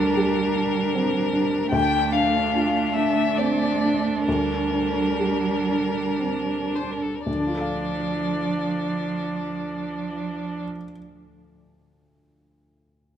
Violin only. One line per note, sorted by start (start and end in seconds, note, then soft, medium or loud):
0.00 1.70 A#4 medium
1.70 2.14 G5 medium
2.13 2.95 F5 medium
2.94 3.39 E5 medium
3.37 4.24 D5 medium
4.24 6.77 A#4 medium
6.75 6.93 C5 soft
6.91 7.04 A#4 soft
7.02 7.16 A4 soft
7.15 7.25 A#4 soft
7.25 10.62 D5 soft